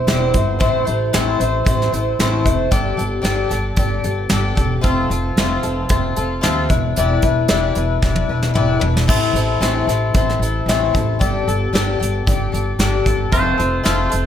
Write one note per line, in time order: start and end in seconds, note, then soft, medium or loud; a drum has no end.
0.07 0.31 E1 medium
0.07 0.34 E3 medium
0.07 0.34 G3 medium
0.07 0.34 C4 medium
0.07 0.34 E4 medium
0.07 0.32 C5 medium
0.07 snare loud
0.07 closed hi-hat medium
0.34 0.58 G1 medium
0.34 0.59 C4 soft
0.34 0.59 E4 soft
0.34 0.59 C5 medium
0.34 kick medium
0.34 closed hi-hat medium
0.59 0.84 A1 medium
0.59 0.86 A2 medium
0.59 0.87 E3 medium
0.59 0.87 A3 medium
0.59 0.86 C4 medium
0.59 0.85 E4 medium
0.59 0.84 C5 medium
0.59 kick loud
0.59 closed hi-hat medium
0.85 1.11 A1 medium
0.85 1.13 A3 soft
0.85 1.14 C4 soft
0.85 1.13 E4 soft
0.85 1.13 C5 medium
0.85 closed hi-hat soft
1.13 1.38 A1 medium
1.13 1.40 A2 medium
1.13 1.40 E3 medium
1.13 1.40 A3 medium
1.13 1.40 C4 medium
1.13 1.40 E4 medium
1.13 1.39 C5 medium
1.13 snare loud
1.13 closed hi-hat medium
1.40 1.64 A1 medium
1.40 1.64 A3 soft
1.40 1.65 C4 medium
1.40 1.66 E4 soft
1.40 1.67 C5 medium
1.40 closed hi-hat medium
1.65 1.90 A1 medium
1.65 1.92 A3 medium
1.65 1.93 C4 medium
1.65 1.92 E4 medium
1.65 1.91 C5 medium
1.65 kick loud
1.65 closed hi-hat medium
1.82 snare soft
1.92 2.16 A1 medium
1.92 2.18 A3 soft
1.92 2.19 C4 soft
1.92 2.19 E4 soft
1.92 2.19 C5 medium
1.92 closed hi-hat medium
2.19 2.43 A1 medium
2.19 2.46 A2 medium
2.19 2.46 E3 medium
2.19 2.46 A3 medium
2.19 2.46 C4 medium
2.19 2.44 E4 medium
2.19 2.44 C5 medium
2.19 snare loud
2.19 closed hi-hat medium
2.45 2.69 F1 medium
2.45 2.70 A3 soft
2.45 2.71 C4 soft
2.45 2.71 E4 medium
2.45 2.71 C5 medium
2.45 kick medium
2.45 closed hi-hat medium
2.71 2.96 G1 medium
2.71 2.98 G3 medium
2.71 2.98 D4 medium
2.71 2.97 G4 medium
2.71 2.96 A4 medium
2.71 kick loud
2.71 closed hi-hat medium
2.97 3.22 G1 medium
2.97 3.21 D4 soft
2.97 3.23 G4 medium
2.97 3.23 A4 medium
2.97 closed hi-hat medium
3.22 3.48 G1 medium
3.22 3.50 G3 medium
3.22 3.51 D4 medium
3.22 3.50 G4 medium
3.22 3.48 A4 loud
3.22 snare loud
3.22 closed hi-hat medium
3.49 3.75 G1 medium
3.49 3.77 D4 soft
3.49 3.77 G4 medium
3.49 3.77 A4 medium
3.49 snare soft
3.49 closed hi-hat medium
3.76 4.01 G1 medium
3.76 4.05 G3 medium
3.76 4.04 D4 medium
3.76 4.04 G4 medium
3.76 4.03 A4 medium
3.76 kick loud
3.76 closed hi-hat medium
4.04 4.28 G1 medium
4.04 4.31 D4 soft
4.04 4.30 G4 soft
4.04 4.31 A4 medium
4.04 closed hi-hat medium
4.29 4.55 G1 medium
4.29 4.57 G3 medium
4.29 4.56 D4 medium
4.29 4.55 G4 medium
4.29 4.54 A4 medium
4.29 snare loud
4.29 closed hi-hat medium
4.55 4.81 E1 medium
4.55 4.82 D4 soft
4.55 4.83 G4 soft
4.55 4.82 A4 medium
4.55 kick medium
4.55 closed hi-hat medium
4.81 5.08 F1 medium
4.81 5.10 F3 medium
4.81 5.10 A3 medium
4.81 5.10 C4 medium
4.81 5.10 F4 medium
4.81 5.10 A4 medium
4.81 kick loud
4.81 closed hi-hat medium
5.10 5.34 F1 medium
5.10 5.37 C4 soft
5.10 5.38 F4 soft
5.10 5.38 A4 medium
5.10 closed hi-hat medium
5.37 5.61 F1 medium
5.37 5.64 F3 medium
5.37 5.64 A3 medium
5.37 5.64 C4 medium
5.37 5.64 F4 medium
5.37 5.62 A4 loud
5.37 snare loud
5.37 closed hi-hat medium
5.63 5.87 F1 medium
5.63 5.88 C4 soft
5.63 5.89 F4 medium
5.63 5.89 A4 medium
5.63 closed hi-hat medium
5.89 6.14 F1 medium
5.89 6.17 A3 medium
5.89 6.16 C4 medium
5.89 6.17 F4 medium
5.89 6.16 A4 medium
5.89 kick loud
5.89 closed hi-hat medium
6.16 6.41 F1 medium
6.16 6.42 C4 soft
6.16 6.42 F4 soft
6.16 6.42 A4 medium
6.16 closed hi-hat medium
6.41 6.68 D#2 medium
6.41 6.69 F3 medium
6.41 6.70 A3 medium
6.41 6.70 C4 medium
6.41 6.69 F4 loud
6.41 6.68 A4 medium
6.41 snare loud
6.41 closed hi-hat medium
6.69 6.93 E1 medium
6.69 6.97 D4 soft
6.69 6.96 E4 soft
6.69 6.96 B4 medium
6.69 kick loud
6.69 closed hi-hat medium
6.96 7.21 E1 medium
6.96 7.23 E3 medium
6.96 7.24 G3 medium
6.96 7.23 D4 medium
6.96 7.23 E4 medium
6.96 7.21 B4 medium
6.96 closed hi-hat medium
7.22 7.47 E1 medium
7.22 7.49 D4 soft
7.22 7.49 E4 medium
7.22 7.50 B4 medium
7.22 kick medium
7.22 closed hi-hat medium
7.48 7.74 E1 medium
7.48 7.76 E3 medium
7.48 7.76 G3 medium
7.48 7.76 D4 medium
7.48 7.76 E4 medium
7.48 7.75 B4 medium
7.48 snare loud
7.48 closed hi-hat medium
7.75 8.00 E1 medium
7.75 8.03 D4 soft
7.75 8.04 E4 soft
7.75 8.03 B4 medium
7.75 closed hi-hat medium
8.02 8.26 E1 medium
8.02 8.30 G3 medium
8.02 8.30 D4 medium
8.02 8.29 E4 medium
8.02 8.28 B4 medium
8.02 kick loud
8.02 snare medium
8.16 high tom medium
8.29 8.52 E1 medium
8.29 8.54 D4 soft
8.29 8.54 E4 soft
8.29 8.55 B4 medium
8.43 snare medium
8.54 8.79 E1 medium
8.54 8.81 E3 medium
8.54 8.82 G3 medium
8.54 8.82 D4 medium
8.54 8.81 E4 medium
8.54 8.78 B4 medium
8.54 mid tom medium
8.80 9.06 E1 medium
8.80 9.08 D4 soft
8.80 9.07 E4 soft
8.80 9.07 B4 medium
8.80 floor tom medium
8.97 snare medium
9.07 9.32 A1 medium
9.07 9.34 A2 medium
9.07 9.35 E3 medium
9.07 9.35 A3 medium
9.07 9.35 C4 medium
9.07 9.35 E4 medium
9.07 9.35 A4 medium
9.07 kick loud
9.07 crash medium
9.33 9.58 A1 medium
9.33 9.60 A3 soft
9.33 9.61 C4 soft
9.33 9.61 E4 medium
9.33 9.61 A4 medium
9.33 closed hi-hat medium
9.61 9.85 A1 medium
9.61 9.88 A2 medium
9.61 9.88 E3 medium
9.61 9.88 A3 medium
9.61 9.87 C4 medium
9.61 9.87 E4 medium
9.61 9.86 A4 loud
9.61 snare loud
9.61 closed hi-hat medium
9.87 10.11 A1 medium
9.87 10.13 A3 soft
9.87 10.14 C4 soft
9.87 10.15 E4 medium
9.87 10.14 A4 medium
9.87 snare soft
9.87 closed hi-hat medium
10.14 10.38 A1 medium
10.14 10.41 A3 medium
10.14 10.42 C4 medium
10.14 10.42 E4 medium
10.14 10.41 A4 medium
10.14 kick loud
10.14 closed hi-hat medium
10.29 snare soft
10.39 10.64 A1 medium
10.39 10.68 E4 medium
10.39 10.68 A4 medium
10.39 closed hi-hat medium
10.44 10.68 A3 soft
10.44 10.67 C4 soft
10.66 10.90 A1 medium
10.66 10.94 A2 medium
10.66 10.95 E3 medium
10.66 10.95 A3 medium
10.66 10.95 C4 medium
10.66 10.94 E4 medium
10.66 10.92 A4 medium
10.66 snare medium
10.66 closed hi-hat medium
10.94 11.18 A1 medium
10.94 11.19 A3 soft
10.94 11.20 C4 soft
10.94 11.20 E4 medium
10.94 11.19 A4 medium
10.94 kick medium
10.94 closed hi-hat medium
11.19 11.44 G1 medium
11.19 11.46 G3 medium
11.19 11.47 D4 medium
11.19 11.47 G4 medium
11.19 11.46 A4 medium
11.19 kick loud
11.19 closed hi-hat medium
11.47 11.71 G1 medium
11.47 11.73 D4 soft
11.47 11.72 G4 medium
11.47 11.73 A4 medium
11.47 closed hi-hat medium
11.73 11.97 G1 medium
11.73 12.00 G3 medium
11.73 12.00 D4 medium
11.73 11.99 G4 medium
11.73 11.98 A4 medium
11.73 snare loud
11.73 closed hi-hat medium
11.99 12.24 G1 medium
11.99 12.26 D4 soft
11.99 12.26 G4 medium
11.99 12.26 A4 medium
11.99 closed hi-hat medium
12.26 12.50 G1 medium
12.26 12.53 G3 medium
12.26 12.53 D4 medium
12.26 12.52 G4 medium
12.26 12.51 A4 medium
12.26 kick loud
12.26 closed hi-hat medium
12.52 12.77 G1 medium
12.52 12.78 D4 soft
12.52 12.79 G4 soft
12.52 12.79 A4 medium
12.52 closed hi-hat medium
12.79 13.02 G1 medium
12.79 13.05 G3 medium
12.79 13.06 D4 medium
12.79 13.06 G4 medium
12.79 13.05 A4 medium
12.79 snare loud
12.79 closed hi-hat medium
13.06 13.29 G1 medium
13.06 13.32 D4 soft
13.06 13.33 G4 soft
13.06 13.32 A4 medium
13.06 kick medium
13.06 closed hi-hat medium
13.32 13.55 F1 medium
13.32 13.58 F3 medium
13.32 13.58 A3 medium
13.32 13.58 C4 medium
13.32 13.58 F4 medium
13.32 13.57 A4 medium
13.32 14.26 C5 medium
13.32 kick loud
13.32 closed hi-hat medium
13.58 13.82 F1 medium
13.58 13.83 C4 soft
13.58 13.83 F4 soft
13.58 13.84 A4 medium
13.58 closed hi-hat medium
13.83 14.09 F1 medium
13.83 14.11 F3 medium
13.83 14.11 A3 medium
13.83 14.10 C4 medium
13.83 14.10 F4 medium
13.83 14.08 A4 medium
13.83 snare loud
13.83 closed hi-hat medium
14.10 14.26 F1 medium
14.10 14.26 C4 soft
14.10 14.26 F4 soft
14.10 14.26 A4 medium
14.10 closed hi-hat medium